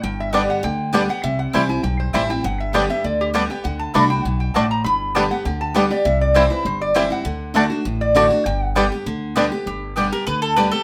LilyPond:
<<
  \new Staff \with { instrumentName = "Resonator guitar played with a steel bar" } { \time 4/4 \key g \major \tempo 4 = 199 g''8 e''8 d''8 fis''8 g''4. fis''8 | e''8 fis''8 g''8 aes''8 g''8 c''8 e''8 g''8 | fis''8 e''8 cis''8 e''8 d''8 g'8 r8 g''8 | fis''8 a''8 b''8 g''8 fis''8 g''8 a''8 bes''8 |
b''4 a''8 fis''8 g''8 a''8 fis''8 d''8 | e''8 d''8 c''8 b'8 c''8 d''8 e''8 fis''8~ | fis''2 r8 d''4. | g''8 fis''8 r2. |
g'1 | }
  \new Staff \with { instrumentName = "Mandolin" } { \time 4/4 \key g \major r1 | r1 | r1 | r1 |
r1 | r1 | r1 | r1 |
r4. bes'8 b'8 a'8 b'8 a'8 | }
  \new Staff \with { instrumentName = "Mandolin" } { \time 4/4 \key g \major r4 <b g' d'' g''>8 r4. <b g' d'' g''>8 r8 | r4 <c' e' c'' g''>8 r4. <c' e' c'' g''>8 r8 | r4 <b g' d'' g''>8 r4. <b g' d'' g''>8 r8 | r4 <a fis' d'' a''>8 r4. <a fis' d'' a''>8 r8 |
r4 <b g' d'' g''>8 r4. <b g' d'' g''>8 r8 | r4 <c' e' c'' g''>8 r4. <c' e' c'' g''>8 r8 | r4 <a fis' d'' a''>8 r4. <a fis' d'' a''>8 r8 | r4 <b g' d'' g''>8 r4. <b g' d'' g''>8 r8 |
r4 <b g' d'' g''>8 r4. <b g' d'' g''>8 r8 | }
  \new Staff \with { instrumentName = "Five-string banjo" } { \time 4/4 \key g \major r4 <g b d'>8 r4. <g b d'>8 r8 | r4 <g c' e'>8 r4. <g c' e'>8 r8 | r4 <g b d'>8 r4. <g b d'>8 r8 | r4 <a d'>8 r4. <a d'>8 r8 |
r4 <g b d'>8 r4. <g b d'>8 r8 | r4 <g c' e'>8 r4. <g c' e'>8 r8 | r4 <a d'>8 r4. <a d'>8 r8 | r4 <g b d'>8 r4. <g b d'>8 r8 |
r1 | }
  \new Staff \with { instrumentName = "Steel-string acoustic guitar" } { \time 4/4 \key g \major << { r4 <d g b g'>4 r4 <d g b g'>8 <b g'>8 | r4 <e g c' e'>8 <c' e'>8 r4 <e g c' e'>8 <c' e'>8 | r4 <d g b g'>8 <b g'>8 r4 <d g b g'>8 <b g'>8 | r4 <d a d' fis'>8 <d' fis'>8 r2 |
r4 <d g b g'>8 <b g'>8 r4 <d g b g'>8 <b g'>8 | r4 <e g c' e'>8 <c' e'>8 r4 <e g c' e'>8 <c' e'>8 | r4 <d a d' fis'>8 <d' fis'>8 r4 <d a d' fis'>8 <d' fis'>8 | r4 <d g b g'>8 <b g'>8 r4 <d g b g'>8 <b g'>8 |
r4 <d g b g'>8 <b g'>8 r4 <d g b g'>8 <b g'>8 | } \\ { g,2 d2 | c2 g,2 | g,2 d2 | d2 b,4 a,4 |
g,2 d2 | c2 g,2 | d2 a,2 | g,2 d2 |
g,2 d2 | } >> }
  \new Staff \with { instrumentName = "Upright bass" } { \clef bass \time 4/4 \key g \major g,,2 d,2 | c,4 c,4 b,,4 a,,4 | g,,2 d,2 | d,4 c,4 b,,4 a,,4 |
g,,2 d,2 | c,2 g,,2 | d,2 a,,2 | g,,2 d,2 |
g,,2 d,2 | }
>>